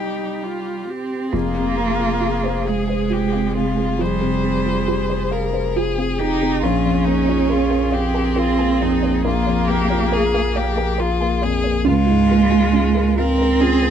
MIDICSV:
0, 0, Header, 1, 7, 480
1, 0, Start_track
1, 0, Tempo, 916031
1, 701, Time_signature, 6, 3, 24, 8
1, 701, Tempo, 884956
1, 3101, Tempo, 872093
1, 7581, End_track
2, 0, Start_track
2, 0, Title_t, "Synth pluck"
2, 0, Program_c, 0, 84
2, 695, Note_on_c, 0, 65, 70
2, 769, Note_off_c, 0, 65, 0
2, 815, Note_on_c, 0, 68, 55
2, 890, Note_off_c, 0, 68, 0
2, 1060, Note_on_c, 0, 68, 55
2, 1133, Note_off_c, 0, 68, 0
2, 1174, Note_on_c, 0, 65, 78
2, 1249, Note_off_c, 0, 65, 0
2, 1296, Note_on_c, 0, 72, 58
2, 1371, Note_off_c, 0, 72, 0
2, 1413, Note_on_c, 0, 68, 51
2, 1489, Note_off_c, 0, 68, 0
2, 1537, Note_on_c, 0, 77, 56
2, 1612, Note_off_c, 0, 77, 0
2, 1657, Note_on_c, 0, 65, 72
2, 1733, Note_off_c, 0, 65, 0
2, 1778, Note_on_c, 0, 77, 56
2, 1853, Note_off_c, 0, 77, 0
2, 1902, Note_on_c, 0, 68, 49
2, 1976, Note_off_c, 0, 68, 0
2, 2021, Note_on_c, 0, 68, 55
2, 2094, Note_off_c, 0, 68, 0
2, 2140, Note_on_c, 0, 65, 74
2, 2213, Note_off_c, 0, 65, 0
2, 2259, Note_on_c, 0, 68, 57
2, 2332, Note_off_c, 0, 68, 0
2, 2501, Note_on_c, 0, 68, 59
2, 2573, Note_off_c, 0, 68, 0
2, 2623, Note_on_c, 0, 65, 81
2, 2695, Note_off_c, 0, 65, 0
2, 2741, Note_on_c, 0, 72, 61
2, 2814, Note_off_c, 0, 72, 0
2, 2860, Note_on_c, 0, 68, 55
2, 2933, Note_off_c, 0, 68, 0
2, 2981, Note_on_c, 0, 77, 55
2, 3053, Note_off_c, 0, 77, 0
2, 3103, Note_on_c, 0, 65, 77
2, 3175, Note_off_c, 0, 65, 0
2, 3225, Note_on_c, 0, 77, 54
2, 3297, Note_off_c, 0, 77, 0
2, 3344, Note_on_c, 0, 68, 54
2, 3416, Note_off_c, 0, 68, 0
2, 3466, Note_on_c, 0, 68, 62
2, 3537, Note_off_c, 0, 68, 0
2, 3581, Note_on_c, 0, 70, 76
2, 3653, Note_off_c, 0, 70, 0
2, 3704, Note_on_c, 0, 73, 57
2, 3775, Note_off_c, 0, 73, 0
2, 3940, Note_on_c, 0, 73, 61
2, 4011, Note_off_c, 0, 73, 0
2, 4055, Note_on_c, 0, 70, 87
2, 4127, Note_off_c, 0, 70, 0
2, 4170, Note_on_c, 0, 77, 67
2, 4244, Note_off_c, 0, 77, 0
2, 4289, Note_on_c, 0, 73, 61
2, 4364, Note_off_c, 0, 73, 0
2, 4412, Note_on_c, 0, 80, 61
2, 4486, Note_off_c, 0, 80, 0
2, 4531, Note_on_c, 0, 70, 85
2, 4606, Note_off_c, 0, 70, 0
2, 4655, Note_on_c, 0, 80, 64
2, 4730, Note_off_c, 0, 80, 0
2, 4778, Note_on_c, 0, 73, 58
2, 4852, Note_off_c, 0, 73, 0
2, 4897, Note_on_c, 0, 73, 64
2, 4971, Note_off_c, 0, 73, 0
2, 5019, Note_on_c, 0, 70, 89
2, 5092, Note_off_c, 0, 70, 0
2, 5140, Note_on_c, 0, 73, 64
2, 5213, Note_off_c, 0, 73, 0
2, 5378, Note_on_c, 0, 73, 70
2, 5451, Note_off_c, 0, 73, 0
2, 5502, Note_on_c, 0, 70, 92
2, 5573, Note_off_c, 0, 70, 0
2, 5621, Note_on_c, 0, 77, 69
2, 5693, Note_off_c, 0, 77, 0
2, 5739, Note_on_c, 0, 73, 62
2, 5811, Note_off_c, 0, 73, 0
2, 5861, Note_on_c, 0, 80, 62
2, 5932, Note_off_c, 0, 80, 0
2, 5975, Note_on_c, 0, 70, 93
2, 6047, Note_off_c, 0, 70, 0
2, 6096, Note_on_c, 0, 80, 65
2, 6168, Note_off_c, 0, 80, 0
2, 6214, Note_on_c, 0, 73, 61
2, 6287, Note_off_c, 0, 73, 0
2, 6335, Note_on_c, 0, 73, 65
2, 6407, Note_off_c, 0, 73, 0
2, 6449, Note_on_c, 0, 61, 96
2, 6524, Note_off_c, 0, 61, 0
2, 6571, Note_on_c, 0, 65, 64
2, 6645, Note_off_c, 0, 65, 0
2, 6817, Note_on_c, 0, 65, 71
2, 6889, Note_off_c, 0, 65, 0
2, 6937, Note_on_c, 0, 61, 94
2, 7010, Note_off_c, 0, 61, 0
2, 7056, Note_on_c, 0, 68, 74
2, 7129, Note_off_c, 0, 68, 0
2, 7174, Note_on_c, 0, 65, 62
2, 7248, Note_off_c, 0, 65, 0
2, 7295, Note_on_c, 0, 70, 69
2, 7368, Note_off_c, 0, 70, 0
2, 7418, Note_on_c, 0, 61, 96
2, 7491, Note_off_c, 0, 61, 0
2, 7538, Note_on_c, 0, 70, 66
2, 7581, Note_off_c, 0, 70, 0
2, 7581, End_track
3, 0, Start_track
3, 0, Title_t, "Violin"
3, 0, Program_c, 1, 40
3, 0, Note_on_c, 1, 67, 55
3, 441, Note_off_c, 1, 67, 0
3, 694, Note_on_c, 1, 65, 59
3, 1423, Note_on_c, 1, 68, 49
3, 1432, Note_off_c, 1, 65, 0
3, 1672, Note_on_c, 1, 67, 54
3, 1680, Note_off_c, 1, 68, 0
3, 1902, Note_off_c, 1, 67, 0
3, 1905, Note_on_c, 1, 65, 56
3, 2149, Note_on_c, 1, 72, 69
3, 2157, Note_off_c, 1, 65, 0
3, 2865, Note_on_c, 1, 70, 55
3, 2873, Note_off_c, 1, 72, 0
3, 3106, Note_on_c, 1, 68, 61
3, 3114, Note_off_c, 1, 70, 0
3, 3338, Note_on_c, 1, 67, 66
3, 3347, Note_off_c, 1, 68, 0
3, 3565, Note_off_c, 1, 67, 0
3, 3569, Note_on_c, 1, 65, 64
3, 3809, Note_on_c, 1, 63, 62
3, 3818, Note_off_c, 1, 65, 0
3, 4058, Note_on_c, 1, 65, 63
3, 4066, Note_off_c, 1, 63, 0
3, 4297, Note_on_c, 1, 67, 63
3, 4305, Note_off_c, 1, 65, 0
3, 4541, Note_on_c, 1, 65, 64
3, 4549, Note_off_c, 1, 67, 0
3, 4783, Note_on_c, 1, 63, 69
3, 4791, Note_off_c, 1, 65, 0
3, 5020, Note_off_c, 1, 63, 0
3, 5023, Note_on_c, 1, 65, 74
3, 5256, Note_on_c, 1, 67, 74
3, 5264, Note_off_c, 1, 65, 0
3, 5506, Note_on_c, 1, 68, 74
3, 5514, Note_off_c, 1, 67, 0
3, 5744, Note_on_c, 1, 67, 68
3, 5753, Note_off_c, 1, 68, 0
3, 5982, Note_on_c, 1, 65, 78
3, 5991, Note_off_c, 1, 67, 0
3, 6220, Note_on_c, 1, 68, 79
3, 6228, Note_off_c, 1, 65, 0
3, 6454, Note_on_c, 1, 65, 92
3, 6462, Note_off_c, 1, 68, 0
3, 7174, Note_off_c, 1, 65, 0
3, 7177, Note_on_c, 1, 70, 81
3, 7421, Note_on_c, 1, 68, 88
3, 7429, Note_off_c, 1, 70, 0
3, 7581, Note_off_c, 1, 68, 0
3, 7581, End_track
4, 0, Start_track
4, 0, Title_t, "Felt piano"
4, 0, Program_c, 2, 0
4, 0, Control_c, 2, 64, 127
4, 0, Note_on_c, 2, 36, 40
4, 0, Note_on_c, 2, 63, 28
4, 0, Note_on_c, 2, 67, 29
4, 681, Note_off_c, 2, 36, 0
4, 683, Note_off_c, 2, 63, 0
4, 684, Note_off_c, 2, 67, 0
4, 702, Note_on_c, 2, 41, 50
4, 710, Control_c, 2, 64, 0
4, 795, Control_c, 2, 64, 127
4, 825, Note_on_c, 2, 48, 39
4, 940, Note_on_c, 2, 60, 38
4, 1017, Note_off_c, 2, 48, 0
4, 1060, Note_on_c, 2, 65, 37
4, 1134, Note_off_c, 2, 60, 0
4, 1184, Note_on_c, 2, 68, 42
4, 1254, Note_off_c, 2, 65, 0
4, 1304, Note_on_c, 2, 72, 39
4, 1376, Note_off_c, 2, 68, 0
4, 1429, Note_on_c, 2, 77, 38
4, 1497, Note_off_c, 2, 72, 0
4, 1545, Note_on_c, 2, 72, 43
4, 1620, Note_off_c, 2, 77, 0
4, 1666, Note_on_c, 2, 65, 39
4, 1739, Note_off_c, 2, 72, 0
4, 1790, Note_on_c, 2, 60, 34
4, 1860, Note_off_c, 2, 65, 0
4, 1905, Note_on_c, 2, 48, 43
4, 1981, Note_off_c, 2, 60, 0
4, 2029, Note_on_c, 2, 60, 36
4, 2098, Note_off_c, 2, 48, 0
4, 2126, Note_off_c, 2, 41, 0
4, 2147, Note_on_c, 2, 41, 48
4, 2156, Control_c, 2, 64, 0
4, 2219, Note_off_c, 2, 60, 0
4, 2237, Control_c, 2, 64, 127
4, 2262, Note_on_c, 2, 48, 43
4, 2383, Note_on_c, 2, 60, 43
4, 2454, Note_off_c, 2, 48, 0
4, 2500, Note_on_c, 2, 65, 44
4, 2575, Note_off_c, 2, 60, 0
4, 2623, Note_on_c, 2, 67, 46
4, 2693, Note_off_c, 2, 65, 0
4, 2739, Note_on_c, 2, 72, 45
4, 2815, Note_off_c, 2, 67, 0
4, 2857, Note_on_c, 2, 77, 42
4, 2932, Note_off_c, 2, 72, 0
4, 2977, Note_on_c, 2, 72, 47
4, 3051, Note_off_c, 2, 77, 0
4, 3099, Note_on_c, 2, 65, 43
4, 3172, Note_off_c, 2, 72, 0
4, 3220, Note_on_c, 2, 60, 40
4, 3294, Note_off_c, 2, 65, 0
4, 3338, Note_on_c, 2, 48, 47
4, 3415, Note_off_c, 2, 60, 0
4, 3466, Note_on_c, 2, 60, 42
4, 3533, Note_off_c, 2, 48, 0
4, 3562, Note_off_c, 2, 41, 0
4, 3585, Note_off_c, 2, 60, 0
4, 3589, Note_on_c, 2, 34, 62
4, 3592, Control_c, 2, 64, 0
4, 3698, Control_c, 2, 64, 127
4, 3705, Note_on_c, 2, 41, 47
4, 3821, Note_on_c, 2, 58, 50
4, 3893, Note_off_c, 2, 41, 0
4, 3938, Note_on_c, 2, 65, 49
4, 4010, Note_off_c, 2, 58, 0
4, 4058, Note_on_c, 2, 68, 55
4, 4129, Note_off_c, 2, 65, 0
4, 4169, Note_on_c, 2, 70, 47
4, 4249, Note_off_c, 2, 68, 0
4, 4290, Note_on_c, 2, 77, 51
4, 4365, Note_off_c, 2, 70, 0
4, 4411, Note_on_c, 2, 70, 53
4, 4486, Note_off_c, 2, 77, 0
4, 4535, Note_on_c, 2, 65, 49
4, 4608, Note_off_c, 2, 70, 0
4, 4660, Note_on_c, 2, 58, 47
4, 4731, Note_off_c, 2, 65, 0
4, 4782, Note_on_c, 2, 41, 56
4, 4854, Note_off_c, 2, 58, 0
4, 4905, Note_on_c, 2, 58, 53
4, 4975, Note_off_c, 2, 41, 0
4, 5004, Note_off_c, 2, 34, 0
4, 5020, Note_on_c, 2, 34, 71
4, 5033, Control_c, 2, 64, 0
4, 5096, Note_off_c, 2, 58, 0
4, 5110, Control_c, 2, 64, 127
4, 5145, Note_on_c, 2, 41, 52
4, 5263, Note_on_c, 2, 58, 58
4, 5335, Note_off_c, 2, 41, 0
4, 5388, Note_on_c, 2, 65, 62
4, 5453, Note_off_c, 2, 58, 0
4, 5509, Note_on_c, 2, 68, 63
4, 5576, Note_off_c, 2, 65, 0
4, 5623, Note_on_c, 2, 70, 59
4, 5696, Note_off_c, 2, 68, 0
4, 5737, Note_on_c, 2, 77, 59
4, 5813, Note_off_c, 2, 70, 0
4, 5858, Note_on_c, 2, 70, 62
4, 5929, Note_off_c, 2, 77, 0
4, 5982, Note_on_c, 2, 65, 59
4, 6049, Note_off_c, 2, 70, 0
4, 6103, Note_on_c, 2, 58, 55
4, 6171, Note_off_c, 2, 65, 0
4, 6229, Note_on_c, 2, 41, 58
4, 6291, Note_off_c, 2, 58, 0
4, 6347, Note_on_c, 2, 58, 55
4, 6414, Note_off_c, 2, 41, 0
4, 6433, Note_off_c, 2, 34, 0
4, 6462, Note_off_c, 2, 58, 0
4, 6466, Control_c, 2, 64, 0
4, 6468, Note_on_c, 2, 37, 73
4, 6541, Control_c, 2, 64, 127
4, 6590, Note_on_c, 2, 44, 59
4, 6706, Note_on_c, 2, 58, 62
4, 6776, Note_off_c, 2, 44, 0
4, 6825, Note_on_c, 2, 65, 58
4, 6894, Note_off_c, 2, 58, 0
4, 6943, Note_on_c, 2, 68, 64
4, 7014, Note_off_c, 2, 65, 0
4, 7066, Note_on_c, 2, 70, 62
4, 7133, Note_off_c, 2, 68, 0
4, 7189, Note_on_c, 2, 77, 57
4, 7254, Note_off_c, 2, 70, 0
4, 7312, Note_on_c, 2, 70, 58
4, 7376, Note_off_c, 2, 77, 0
4, 7428, Note_on_c, 2, 65, 60
4, 7498, Note_off_c, 2, 70, 0
4, 7545, Note_on_c, 2, 58, 49
4, 7581, Note_off_c, 2, 37, 0
4, 7581, Note_off_c, 2, 58, 0
4, 7581, Note_off_c, 2, 65, 0
4, 7581, End_track
5, 0, Start_track
5, 0, Title_t, "Viola"
5, 0, Program_c, 3, 41
5, 0, Note_on_c, 3, 63, 44
5, 226, Note_on_c, 3, 65, 43
5, 234, Note_off_c, 3, 63, 0
5, 470, Note_on_c, 3, 67, 48
5, 477, Note_off_c, 3, 65, 0
5, 704, Note_off_c, 3, 67, 0
5, 707, Note_on_c, 3, 68, 49
5, 3565, Note_off_c, 3, 68, 0
5, 3583, Note_on_c, 3, 68, 57
5, 6434, Note_off_c, 3, 68, 0
5, 6451, Note_on_c, 3, 65, 67
5, 6495, Note_off_c, 3, 65, 0
5, 6697, Note_on_c, 3, 65, 59
5, 6741, Note_off_c, 3, 65, 0
5, 6939, Note_on_c, 3, 65, 62
5, 6983, Note_off_c, 3, 65, 0
5, 7183, Note_on_c, 3, 65, 61
5, 7227, Note_off_c, 3, 65, 0
5, 7418, Note_on_c, 3, 65, 61
5, 7462, Note_off_c, 3, 65, 0
5, 7581, End_track
6, 0, Start_track
6, 0, Title_t, "Cello"
6, 0, Program_c, 4, 42
6, 0, Note_on_c, 4, 55, 49
6, 445, Note_off_c, 4, 55, 0
6, 461, Note_on_c, 4, 60, 61
6, 695, Note_on_c, 4, 58, 81
6, 703, Note_off_c, 4, 60, 0
6, 1426, Note_on_c, 4, 56, 65
6, 1434, Note_off_c, 4, 58, 0
6, 2146, Note_off_c, 4, 56, 0
6, 2149, Note_on_c, 4, 55, 74
6, 3084, Note_off_c, 4, 55, 0
6, 3343, Note_on_c, 4, 63, 84
6, 3581, Note_on_c, 4, 61, 81
6, 3589, Note_off_c, 4, 63, 0
6, 4302, Note_on_c, 4, 60, 89
6, 4310, Note_off_c, 4, 61, 0
6, 5020, Note_off_c, 4, 60, 0
6, 5023, Note_on_c, 4, 58, 96
6, 5959, Note_off_c, 4, 58, 0
6, 6456, Note_on_c, 4, 56, 110
6, 7182, Note_on_c, 4, 60, 115
6, 7191, Note_off_c, 4, 56, 0
6, 7581, Note_off_c, 4, 60, 0
6, 7581, End_track
7, 0, Start_track
7, 0, Title_t, "Sub bass"
7, 0, Program_c, 5, 38
7, 699, Note_on_c, 5, 29, 58
7, 3574, Note_on_c, 5, 34, 64
7, 3582, Note_off_c, 5, 29, 0
7, 6456, Note_on_c, 5, 37, 73
7, 6464, Note_off_c, 5, 34, 0
7, 7581, Note_off_c, 5, 37, 0
7, 7581, End_track
0, 0, End_of_file